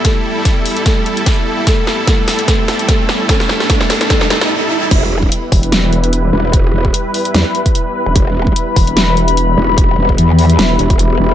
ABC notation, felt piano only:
X:1
M:4/4
L:1/8
Q:"Swing 16ths" 1/4=148
K:Em
V:1 name="Felt piano"
[A,A]4 [A,A]4 | [A,A]2 [A,A]2 [A,A]2 [A,A]2 | [A,A] [A,A] [A,A] [A,A] [A,A] [A,A] z2 | z8 |
z8 | z8 | z8 |]